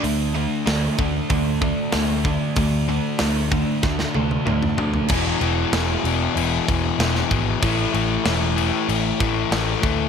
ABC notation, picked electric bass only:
X:1
M:4/4
L:1/8
Q:1/4=95
K:Dlyd
V:1 name="Picked electric bass" clef=bass
D,,2 D,, D,, D,,2 D,,2 | D,,2 D,,2 D,, D,, D,, D,, | E,,, E,,, E,,, E,,, E,,, E,,, E,,, G,,, | A,,, A,,, E,,,2 A,,, A,,, A,,, D,, |]